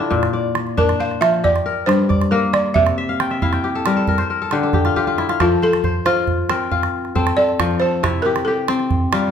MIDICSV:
0, 0, Header, 1, 4, 480
1, 0, Start_track
1, 0, Key_signature, -1, "major"
1, 0, Tempo, 439883
1, 125, Time_signature, 12, 3, 24, 8
1, 10159, End_track
2, 0, Start_track
2, 0, Title_t, "Balafon"
2, 0, Program_c, 0, 12
2, 856, Note_on_c, 0, 70, 88
2, 1096, Note_on_c, 0, 77, 91
2, 1099, Note_off_c, 0, 70, 0
2, 1320, Note_on_c, 0, 76, 90
2, 1340, Note_off_c, 0, 77, 0
2, 1548, Note_off_c, 0, 76, 0
2, 1573, Note_on_c, 0, 74, 97
2, 2033, Note_on_c, 0, 72, 88
2, 2067, Note_off_c, 0, 74, 0
2, 2521, Note_on_c, 0, 70, 73
2, 2537, Note_off_c, 0, 72, 0
2, 2765, Note_on_c, 0, 74, 88
2, 2774, Note_off_c, 0, 70, 0
2, 2993, Note_on_c, 0, 76, 85
2, 3016, Note_off_c, 0, 74, 0
2, 4401, Note_off_c, 0, 76, 0
2, 5912, Note_on_c, 0, 65, 86
2, 6148, Note_on_c, 0, 69, 95
2, 6150, Note_off_c, 0, 65, 0
2, 6608, Note_on_c, 0, 72, 78
2, 6635, Note_off_c, 0, 69, 0
2, 6834, Note_off_c, 0, 72, 0
2, 8038, Note_on_c, 0, 74, 107
2, 8507, Note_on_c, 0, 72, 99
2, 8538, Note_off_c, 0, 74, 0
2, 8963, Note_off_c, 0, 72, 0
2, 8972, Note_on_c, 0, 70, 95
2, 9212, Note_off_c, 0, 70, 0
2, 9218, Note_on_c, 0, 69, 86
2, 9677, Note_off_c, 0, 69, 0
2, 10159, End_track
3, 0, Start_track
3, 0, Title_t, "Kora"
3, 0, Program_c, 1, 46
3, 0, Note_on_c, 1, 50, 83
3, 0, Note_on_c, 1, 62, 62
3, 0, Note_on_c, 1, 64, 69
3, 0, Note_on_c, 1, 65, 67
3, 0, Note_on_c, 1, 67, 73
3, 0, Note_on_c, 1, 69, 71
3, 0, Note_on_c, 1, 70, 66
3, 115, Note_on_c, 1, 46, 81
3, 180, Note_off_c, 1, 50, 0
3, 180, Note_off_c, 1, 69, 0
3, 308, Note_off_c, 1, 70, 0
3, 362, Note_on_c, 1, 74, 64
3, 840, Note_off_c, 1, 62, 0
3, 845, Note_on_c, 1, 62, 83
3, 1086, Note_on_c, 1, 72, 57
3, 1179, Note_off_c, 1, 67, 0
3, 1320, Note_on_c, 1, 53, 77
3, 1385, Note_off_c, 1, 64, 0
3, 1409, Note_off_c, 1, 65, 0
3, 1566, Note_on_c, 1, 67, 61
3, 1572, Note_off_c, 1, 74, 0
3, 1624, Note_off_c, 1, 46, 0
3, 1624, Note_off_c, 1, 53, 0
3, 1808, Note_on_c, 1, 70, 60
3, 2042, Note_on_c, 1, 43, 82
3, 2282, Note_on_c, 1, 74, 68
3, 2381, Note_off_c, 1, 72, 0
3, 2523, Note_off_c, 1, 70, 0
3, 2527, Note_on_c, 1, 58, 81
3, 2527, Note_on_c, 1, 70, 65
3, 2677, Note_off_c, 1, 62, 0
3, 3007, Note_on_c, 1, 48, 84
3, 3067, Note_off_c, 1, 43, 0
3, 3107, Note_off_c, 1, 67, 0
3, 3249, Note_on_c, 1, 76, 70
3, 3370, Note_on_c, 1, 77, 61
3, 3490, Note_on_c, 1, 79, 69
3, 3491, Note_off_c, 1, 74, 0
3, 3607, Note_off_c, 1, 76, 0
3, 3611, Note_on_c, 1, 76, 63
3, 3677, Note_off_c, 1, 77, 0
3, 3732, Note_on_c, 1, 64, 77
3, 3733, Note_on_c, 1, 77, 66
3, 3850, Note_off_c, 1, 79, 0
3, 3854, Note_on_c, 1, 79, 62
3, 3916, Note_off_c, 1, 70, 0
3, 3970, Note_on_c, 1, 67, 66
3, 4096, Note_on_c, 1, 69, 73
3, 4161, Note_off_c, 1, 58, 0
3, 4214, Note_on_c, 1, 55, 69
3, 4216, Note_on_c, 1, 70, 61
3, 4323, Note_off_c, 1, 69, 0
3, 4327, Note_on_c, 1, 69, 62
3, 4452, Note_off_c, 1, 70, 0
3, 4456, Note_on_c, 1, 70, 69
3, 4509, Note_off_c, 1, 48, 0
3, 4509, Note_off_c, 1, 55, 0
3, 4566, Note_on_c, 1, 72, 64
3, 4688, Note_off_c, 1, 70, 0
3, 4692, Note_on_c, 1, 70, 61
3, 4739, Note_off_c, 1, 76, 0
3, 4758, Note_off_c, 1, 69, 0
3, 4819, Note_on_c, 1, 69, 68
3, 4823, Note_off_c, 1, 77, 0
3, 4871, Note_off_c, 1, 79, 0
3, 4933, Note_off_c, 1, 67, 0
3, 4936, Note_on_c, 1, 50, 75
3, 4938, Note_on_c, 1, 67, 68
3, 5049, Note_off_c, 1, 69, 0
3, 5054, Note_on_c, 1, 69, 61
3, 5119, Note_off_c, 1, 70, 0
3, 5167, Note_off_c, 1, 67, 0
3, 5171, Note_on_c, 1, 67, 65
3, 5295, Note_on_c, 1, 65, 69
3, 5360, Note_off_c, 1, 64, 0
3, 5410, Note_off_c, 1, 67, 0
3, 5412, Note_off_c, 1, 65, 0
3, 5414, Note_on_c, 1, 67, 67
3, 5417, Note_on_c, 1, 65, 77
3, 5529, Note_off_c, 1, 65, 0
3, 5533, Note_on_c, 1, 65, 65
3, 5651, Note_on_c, 1, 64, 69
3, 5768, Note_off_c, 1, 65, 0
3, 5772, Note_on_c, 1, 65, 63
3, 5862, Note_off_c, 1, 72, 0
3, 5893, Note_off_c, 1, 69, 0
3, 5896, Note_on_c, 1, 53, 74
3, 5897, Note_on_c, 1, 69, 67
3, 5949, Note_off_c, 1, 50, 0
3, 5961, Note_off_c, 1, 64, 0
3, 6137, Note_on_c, 1, 72, 66
3, 6370, Note_off_c, 1, 72, 0
3, 6375, Note_on_c, 1, 72, 66
3, 6609, Note_off_c, 1, 65, 0
3, 6613, Note_on_c, 1, 65, 84
3, 6614, Note_off_c, 1, 65, 0
3, 6614, Note_on_c, 1, 65, 75
3, 6955, Note_off_c, 1, 67, 0
3, 7089, Note_on_c, 1, 60, 79
3, 7091, Note_on_c, 1, 70, 60
3, 7157, Note_off_c, 1, 69, 0
3, 7322, Note_off_c, 1, 65, 0
3, 7327, Note_on_c, 1, 65, 71
3, 7671, Note_off_c, 1, 72, 0
3, 7802, Note_off_c, 1, 60, 0
3, 7807, Note_on_c, 1, 60, 84
3, 7807, Note_on_c, 1, 69, 70
3, 7872, Note_off_c, 1, 70, 0
3, 8045, Note_off_c, 1, 69, 0
3, 8050, Note_on_c, 1, 69, 65
3, 8277, Note_off_c, 1, 53, 0
3, 8290, Note_on_c, 1, 53, 88
3, 8521, Note_off_c, 1, 69, 0
3, 8526, Note_on_c, 1, 69, 74
3, 8764, Note_on_c, 1, 48, 81
3, 8767, Note_on_c, 1, 64, 68
3, 8824, Note_off_c, 1, 53, 0
3, 8832, Note_off_c, 1, 65, 0
3, 9010, Note_on_c, 1, 67, 66
3, 9243, Note_off_c, 1, 67, 0
3, 9248, Note_on_c, 1, 67, 65
3, 9473, Note_off_c, 1, 60, 0
3, 9478, Note_on_c, 1, 60, 81
3, 9480, Note_off_c, 1, 60, 0
3, 9480, Note_on_c, 1, 60, 74
3, 9959, Note_on_c, 1, 55, 83
3, 9959, Note_on_c, 1, 65, 59
3, 9964, Note_off_c, 1, 69, 0
3, 10025, Note_off_c, 1, 64, 0
3, 10159, Note_off_c, 1, 48, 0
3, 10159, Note_off_c, 1, 55, 0
3, 10159, Note_off_c, 1, 60, 0
3, 10159, Note_off_c, 1, 65, 0
3, 10159, Note_off_c, 1, 67, 0
3, 10159, End_track
4, 0, Start_track
4, 0, Title_t, "Calabash"
4, 126, Note_on_c, 9, 36, 57
4, 236, Note_off_c, 9, 36, 0
4, 250, Note_on_c, 9, 38, 50
4, 359, Note_off_c, 9, 38, 0
4, 603, Note_on_c, 9, 38, 57
4, 712, Note_off_c, 9, 38, 0
4, 728, Note_on_c, 9, 38, 17
4, 837, Note_off_c, 9, 38, 0
4, 849, Note_on_c, 9, 36, 62
4, 958, Note_off_c, 9, 36, 0
4, 974, Note_on_c, 9, 38, 43
4, 1083, Note_off_c, 9, 38, 0
4, 1215, Note_on_c, 9, 38, 19
4, 1324, Note_off_c, 9, 38, 0
4, 1333, Note_on_c, 9, 38, 67
4, 1442, Note_off_c, 9, 38, 0
4, 1463, Note_on_c, 9, 38, 17
4, 1572, Note_off_c, 9, 38, 0
4, 1579, Note_on_c, 9, 36, 59
4, 1688, Note_off_c, 9, 36, 0
4, 1699, Note_on_c, 9, 38, 42
4, 1808, Note_off_c, 9, 38, 0
4, 2061, Note_on_c, 9, 38, 54
4, 2170, Note_off_c, 9, 38, 0
4, 2294, Note_on_c, 9, 36, 64
4, 2294, Note_on_c, 9, 38, 20
4, 2403, Note_off_c, 9, 36, 0
4, 2403, Note_off_c, 9, 38, 0
4, 2417, Note_on_c, 9, 38, 48
4, 2526, Note_off_c, 9, 38, 0
4, 2769, Note_on_c, 9, 38, 61
4, 2878, Note_off_c, 9, 38, 0
4, 3005, Note_on_c, 9, 36, 67
4, 3115, Note_off_c, 9, 36, 0
4, 3127, Note_on_c, 9, 38, 50
4, 3236, Note_off_c, 9, 38, 0
4, 3492, Note_on_c, 9, 38, 60
4, 3601, Note_off_c, 9, 38, 0
4, 3607, Note_on_c, 9, 38, 17
4, 3716, Note_off_c, 9, 38, 0
4, 3733, Note_on_c, 9, 36, 66
4, 3842, Note_off_c, 9, 36, 0
4, 3848, Note_on_c, 9, 38, 46
4, 3957, Note_off_c, 9, 38, 0
4, 4207, Note_on_c, 9, 38, 64
4, 4316, Note_off_c, 9, 38, 0
4, 4446, Note_on_c, 9, 36, 66
4, 4555, Note_off_c, 9, 36, 0
4, 4563, Note_on_c, 9, 38, 44
4, 4672, Note_off_c, 9, 38, 0
4, 4923, Note_on_c, 9, 38, 55
4, 5032, Note_off_c, 9, 38, 0
4, 5164, Note_on_c, 9, 36, 62
4, 5164, Note_on_c, 9, 38, 19
4, 5273, Note_off_c, 9, 36, 0
4, 5273, Note_off_c, 9, 38, 0
4, 5291, Note_on_c, 9, 38, 42
4, 5400, Note_off_c, 9, 38, 0
4, 5417, Note_on_c, 9, 36, 38
4, 5526, Note_off_c, 9, 36, 0
4, 5538, Note_on_c, 9, 36, 41
4, 5647, Note_off_c, 9, 36, 0
4, 5657, Note_on_c, 9, 38, 49
4, 5766, Note_off_c, 9, 38, 0
4, 5777, Note_on_c, 9, 38, 49
4, 5886, Note_off_c, 9, 38, 0
4, 5895, Note_on_c, 9, 36, 61
4, 5895, Note_on_c, 9, 38, 58
4, 6004, Note_off_c, 9, 36, 0
4, 6004, Note_off_c, 9, 38, 0
4, 6137, Note_on_c, 9, 38, 20
4, 6246, Note_off_c, 9, 38, 0
4, 6257, Note_on_c, 9, 38, 46
4, 6366, Note_off_c, 9, 38, 0
4, 6371, Note_on_c, 9, 36, 56
4, 6480, Note_off_c, 9, 36, 0
4, 6612, Note_on_c, 9, 38, 57
4, 6721, Note_off_c, 9, 38, 0
4, 6730, Note_on_c, 9, 38, 17
4, 6839, Note_off_c, 9, 38, 0
4, 6846, Note_on_c, 9, 36, 62
4, 6955, Note_off_c, 9, 36, 0
4, 7088, Note_on_c, 9, 38, 66
4, 7197, Note_off_c, 9, 38, 0
4, 7328, Note_on_c, 9, 36, 64
4, 7437, Note_off_c, 9, 36, 0
4, 7456, Note_on_c, 9, 38, 51
4, 7565, Note_off_c, 9, 38, 0
4, 7692, Note_on_c, 9, 38, 18
4, 7801, Note_off_c, 9, 38, 0
4, 7809, Note_on_c, 9, 36, 63
4, 7918, Note_off_c, 9, 36, 0
4, 7930, Note_on_c, 9, 38, 57
4, 8039, Note_off_c, 9, 38, 0
4, 8169, Note_on_c, 9, 38, 20
4, 8278, Note_off_c, 9, 38, 0
4, 8289, Note_on_c, 9, 36, 69
4, 8289, Note_on_c, 9, 38, 69
4, 8398, Note_off_c, 9, 36, 0
4, 8398, Note_off_c, 9, 38, 0
4, 8412, Note_on_c, 9, 38, 23
4, 8521, Note_off_c, 9, 38, 0
4, 8771, Note_on_c, 9, 36, 66
4, 8771, Note_on_c, 9, 38, 64
4, 8880, Note_off_c, 9, 36, 0
4, 8880, Note_off_c, 9, 38, 0
4, 9004, Note_on_c, 9, 38, 22
4, 9113, Note_off_c, 9, 38, 0
4, 9120, Note_on_c, 9, 38, 53
4, 9229, Note_off_c, 9, 38, 0
4, 9475, Note_on_c, 9, 38, 72
4, 9584, Note_off_c, 9, 38, 0
4, 9597, Note_on_c, 9, 38, 20
4, 9706, Note_off_c, 9, 38, 0
4, 9717, Note_on_c, 9, 36, 66
4, 9827, Note_off_c, 9, 36, 0
4, 9958, Note_on_c, 9, 38, 82
4, 10067, Note_off_c, 9, 38, 0
4, 10159, End_track
0, 0, End_of_file